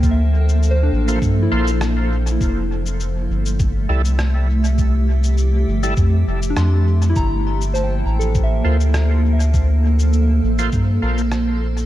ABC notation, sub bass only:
X:1
M:4/4
L:1/8
Q:"Swing 16ths" 1/4=101
K:Gdor
V:1 name="Sub bass" clef=bass
D,,3 A,,, G,, B,,,3 | F,,,3 G,,,2 C,,3- | C,,3 G,,, F,, F,,, F,,2 | G,,,3 A,,,2 D,,3- |
D,,3 A,,, G,, B,,,3 |]